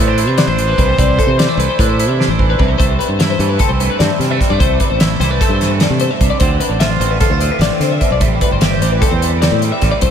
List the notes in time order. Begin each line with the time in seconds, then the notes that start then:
Already playing: A2 E3 A3 E4
0.00 C5
0.08 D4 C5
0.18 E4, closed hi-hat
0.27 C3 E5
0.38 B3 D5, snare, closed hi-hat
0.47 A1 D4 C5
0.58 E3, closed hi-hat
0.68 B4
0.78 C2 C3 B4, kick, closed hi-hat
0.89 C5
0.98 C2 C3 D5, kick, closed hi-hat
1.18 E3 A4, kick, closed hi-hat
1.27 C3 C5
1.37 G3 D5, snare, closed hi-hat
1.48 A3
1.57 C2 E4 B4, closed hi-hat
1.69 C5
1.79 A2 D4 B4, kick, closed hi-hat
1.89 C5
1.99 E4, closed hi-hat
2.08 C3 E5
2.19 D4 D5, snare
2.28 A1 C5
2.39 E3, kick
2.50 B4
2.59 C2 C3 B4, kick
2.68 C5
2.78 C2 C3 A3 C5, kick, closed hi-hat
2.99 B4, closed hi-hat
3.08 G2 C5
3.19 E4 E5, snare, closed hi-hat
3.30 C5
3.39 G2 E3 A3 C5, closed hi-hat
3.49 B4
3.59 C4 A4, kick, closed hi-hat
3.69 C2 C5
3.80 G2 A3, closed hi-hat
3.90 B4
3.99 G2 C4 D5, snare, closed hi-hat
4.19 C3 G3 C5, snare, closed hi-hat
4.31 A3 E5
4.41 C3 G3, kick, snare, closed hi-hat
4.50 G2 A3 D5
4.60 C2 C3 A3 C5, kick, closed hi-hat
4.80 B4, kick, closed hi-hat
4.90 A1 C5
5.00 E4 E5, snare, closed hi-hat
5.10 C5
5.20 C2 E3 G3 C5, snare, closed hi-hat
5.30 A3 B4
5.41 C4 A4, kick, closed hi-hat
5.49 G2 C5
5.61 G2 A3, snare, closed hi-hat
5.72 B4
5.80 A2 D5, snare, closed hi-hat
5.90 C3
6.00 B2 C5, closed hi-hat
6.11 E5
6.21 C2 C3, kick, closed hi-hat
6.30 D5
6.40 D2 D3 C4 C5, kick, closed hi-hat
6.60 B4, closed hi-hat
6.69 A1 C5
6.80 F4 E5, snare, closed hi-hat
6.91 C5
7.00 A1 A3 C4 C5, closed hi-hat
7.11 B4
7.20 F4 A4, kick, snare, closed hi-hat
7.30 D2 C5
7.41 A2 C4, closed hi-hat
7.52 B4
7.59 A1 D3 D5, snare, closed hi-hat
7.80 C3 D3 C5, snare, closed hi-hat
7.92 E5
8.01 B2, kick, closed hi-hat
8.11 B1 D5
8.20 A1 A2 G3 C5, kick, closed hi-hat
8.41 B4, kick, closed hi-hat
8.51 G1 C5
8.61 G4 E5, snare, closed hi-hat
8.72 C5
8.81 A1 E3 G3 C5, closed hi-hat
8.92 B4
9.02 C4 A4, kick, closed hi-hat
9.11 E2 C5
9.22 E2 G3, closed hi-hat
9.32 B4
9.42 C4 D5, snare, closed hi-hat
9.51 A2
9.62 G3 C5, closed hi-hat
9.72 E5
9.82 A1 A2 G3, kick, snare, closed hi-hat
9.92 D5
10.01 C2 C3 A3 C5, kick, closed hi-hat